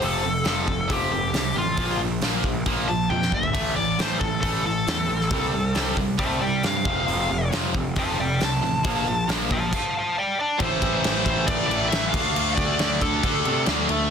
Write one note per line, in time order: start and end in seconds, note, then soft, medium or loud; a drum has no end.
0.02 0.22 F1 medium
0.02 0.22 F2 medium
0.02 0.22 C3 medium
0.02 0.24 F3 medium
0.02 0.46 A4 medium
0.02 open hi-hat medium
0.23 0.44 F1 medium
0.23 0.43 F2 medium
0.23 0.44 C3 medium
0.44 0.66 F1 medium
0.44 0.66 F2 medium
0.44 0.65 C3 medium
0.44 0.67 F3 medium
0.44 snare loud
0.44 open hi-hat soft
0.48 0.90 A4 medium
0.67 0.88 F1 medium
0.67 0.86 F2 medium
0.67 0.87 C3 medium
0.67 kick medium
0.88 1.10 F1 medium
0.88 1.10 F2 medium
0.88 1.10 C3 loud
0.88 1.10 F3 loud
0.88 kick medium
0.88 open hi-hat medium
0.92 1.56 G4 medium
1.11 1.32 F1 medium
1.11 1.32 F2 medium
1.11 1.32 C3 medium
1.33 1.54 C2 medium
1.33 1.54 F2 medium
1.33 1.54 C3 medium
1.33 snare medium
1.33 open hi-hat medium
1.55 1.76 A1 medium
1.55 1.76 F2 medium
1.55 1.76 C3 medium
1.55 2.00 F4 medium
1.77 1.98 A#1 medium
1.77 1.99 A#2 medium
1.77 1.99 F3 medium
1.77 1.99 A#3 medium
1.77 kick medium
1.77 open hi-hat medium
1.99 2.20 A#1 medium
1.99 2.20 A#2 medium
1.99 2.21 F3 medium
2.21 2.42 A#1 medium
2.21 2.43 A#2 medium
2.21 2.43 F3 medium
2.21 2.44 A#3 loud
2.21 snare medium
2.21 open hi-hat medium
2.44 2.64 A#1 medium
2.44 2.65 A#2 medium
2.44 2.65 F3 medium
2.44 kick medium
2.66 2.87 A#1 medium
2.66 2.86 A#2 medium
2.66 2.86 F3 medium
2.66 2.88 A#3 loud
2.66 kick medium
2.66 open hi-hat soft
2.87 3.10 A#1 medium
2.87 3.08 A#2 medium
2.87 3.08 F3 medium
2.87 3.10 A5 medium
3.10 3.31 F2 medium
3.10 3.31 A#2 medium
3.10 3.31 F3 medium
3.10 3.32 G5 medium
3.10 high tom medium
3.22 snare soft
3.32 3.53 G1 medium
3.32 3.53 A#2 medium
3.32 3.53 F3 medium
3.32 3.76 E5 medium
3.32 kick medium
3.43 floor tom medium
3.53 3.75 A1 medium
3.53 3.75 A2 medium
3.53 3.75 E3 medium
3.53 3.76 A3 loud
3.53 kick loud
3.53 open hi-hat medium
3.53 crash medium
3.76 3.97 A1 medium
3.76 3.97 A2 medium
3.76 3.97 E3 medium
3.76 3.98 D5 loud
3.98 4.19 A1 medium
3.98 4.20 A2 medium
3.98 4.20 E3 medium
3.98 4.21 A3 loud
3.98 4.19 C5 medium
3.98 snare loud
3.98 open hi-hat soft
4.19 4.41 A1 medium
4.19 4.41 A2 medium
4.19 4.41 E3 medium
4.19 4.40 A4 medium
4.19 kick medium
4.41 4.63 A1 medium
4.41 4.64 A2 medium
4.41 4.64 E3 loud
4.41 4.64 A3 medium
4.41 4.64 A4 medium
4.41 kick medium
4.41 open hi-hat medium
4.65 4.85 A1 medium
4.65 4.85 A2 medium
4.65 4.86 E3 medium
4.65 5.94 A4 medium
4.87 5.08 E2 medium
4.87 5.08 A2 medium
4.87 5.08 E3 medium
4.87 snare loud
4.87 open hi-hat medium
5.09 5.30 A1 medium
5.09 5.30 A2 medium
5.09 5.30 E3 medium
5.21 snare soft
5.31 5.51 C2 medium
5.31 5.52 C3 medium
5.31 5.53 G3 medium
5.31 5.53 C4 medium
5.31 kick loud
5.31 open hi-hat medium
5.53 5.74 C2 medium
5.53 5.73 C3 medium
5.53 5.74 G3 medium
5.75 5.96 C2 medium
5.75 5.96 C3 medium
5.75 5.97 G3 medium
5.75 5.97 C4 medium
5.75 snare loud
5.75 open hi-hat medium
5.97 6.17 C2 medium
5.97 6.16 C3 medium
5.97 6.17 G3 medium
5.97 kick medium
6.18 6.40 C2 medium
6.18 6.40 C3 medium
6.18 6.40 G3 medium
6.18 6.40 C4 loud
6.18 6.41 E5 medium
6.18 6.41 A5 medium
6.18 kick medium
6.18 open hi-hat medium
6.41 6.62 C2 medium
6.41 6.61 C3 medium
6.41 6.61 G3 medium
6.41 6.62 D5 medium
6.41 6.64 G5 medium
6.63 6.84 G2 medium
6.63 6.84 C3 medium
6.63 6.84 G3 medium
6.63 7.50 F5 medium
6.63 snare loud
6.63 open hi-hat medium
6.85 7.05 F1 medium
6.85 7.06 F2 medium
6.85 7.07 C3 medium
6.85 7.07 F3 medium
6.85 kick loud
7.07 7.28 F1 loud
7.07 7.28 F2 medium
7.07 7.29 C3 medium
7.07 7.29 F3 loud
7.07 open hi-hat soft
7.30 7.50 F1 medium
7.30 7.50 F2 medium
7.30 7.50 C3 medium
7.52 7.72 F1 medium
7.52 7.73 F2 medium
7.52 7.73 C3 medium
7.52 7.74 F3 loud
7.52 snare loud
7.52 open hi-hat soft
7.74 7.94 F1 medium
7.74 7.94 F2 medium
7.74 7.94 C3 medium
7.74 kick medium
7.96 8.16 F1 medium
7.96 8.17 F2 medium
7.96 8.17 C3 loud
7.96 8.18 F3 medium
7.96 8.19 F5 medium
7.96 8.19 A5 medium
7.96 kick loud
7.96 open hi-hat medium
8.19 8.39 F1 medium
8.19 8.39 F2 medium
8.19 8.39 C3 medium
8.19 8.39 D5 medium
8.19 8.41 G5 medium
8.40 8.61 C2 medium
8.40 8.60 F2 medium
8.40 8.61 C3 medium
8.40 9.28 A5 loud
8.40 snare loud
8.40 open hi-hat medium
8.62 8.83 A1 medium
8.62 8.82 F2 medium
8.62 8.82 C3 medium
8.84 9.05 A#1 loud
8.84 9.05 A#2 medium
8.84 9.06 F3 medium
8.84 9.06 A#3 loud
8.84 kick loud
8.84 open hi-hat medium
9.07 9.27 A#1 medium
9.07 9.27 A#2 medium
9.07 9.27 F3 medium
9.29 9.49 A#1 loud
9.29 9.49 A#2 medium
9.29 9.50 F3 medium
9.29 9.50 A#3 loud
9.29 snare medium
9.29 open hi-hat medium
9.51 9.71 A#1 medium
9.51 9.71 A#2 medium
9.51 9.71 F3 medium
9.51 9.73 F5 medium
9.51 9.73 A5 loud
9.51 kick medium
9.73 9.94 F5 medium
9.73 9.96 A5 medium
9.73 kick medium
9.73 crash medium
9.97 10.16 F5 medium
9.97 10.18 A5 medium
10.18 10.38 D5 medium
10.18 10.39 G5 medium
10.39 10.62 D5 medium
10.39 10.61 A5 loud
10.59 10.80 A1 loud
10.59 11.69 A2 medium
10.59 11.69 E3 loud
10.59 11.70 A3 medium
10.59 11.23 C5 medium
10.59 kick loud
10.59 crash medium
10.82 11.02 A1 medium
10.82 kick loud
10.82 crash medium
11.04 11.25 A1 loud
11.04 snare loud
11.04 crash medium
11.24 11.46 A1 medium
11.24 11.48 C5 medium
11.24 kick medium
11.24 crash medium
11.47 11.68 A1 medium
11.47 11.66 D5 loud
11.47 kick loud
11.47 crash medium
11.67 11.90 A1 medium
11.67 11.95 A3 medium
11.67 11.88 D5 medium
11.71 11.92 A2 medium
11.71 11.92 E3 medium
11.71 crash medium
11.89 12.12 A1 loud
11.89 12.08 E5 loud
11.89 crash medium
11.93 12.12 A2 medium
11.93 12.14 E3 medium
11.93 12.15 A3 medium
11.93 snare loud
12.09 13.22 D3 medium
12.09 12.52 F5 loud
12.14 12.34 D2 medium
12.14 13.25 A3 loud
12.14 13.24 D4 loud
12.14 kick loud
12.14 crash loud
12.36 12.57 D2 loud
12.36 crash medium
12.55 12.78 D2 medium
12.55 13.02 D5 loud
12.55 kick medium
12.55 crash medium
12.79 13.01 D2 loud
12.79 snare loud
12.79 crash medium
13.01 13.22 D2 medium
13.01 13.64 A4 medium
13.01 kick medium
13.01 crash medium
13.23 13.44 D2 medium
13.23 13.45 D3 medium
13.23 13.46 A3 loud
13.23 13.44 D4 medium
13.23 kick loud
13.23 crash medium
13.45 13.66 C3 medium
13.45 13.90 D3 medium
13.45 14.10 A3 medium
13.45 13.88 D4 loud
13.45 crash medium
13.66 13.88 D2 loud
13.66 13.88 D3 medium
13.66 14.10 A3 loud
13.66 snare loud
13.66 crash medium
13.70 13.90 D4 loud
13.89 14.09 D2 loud
13.89 crash medium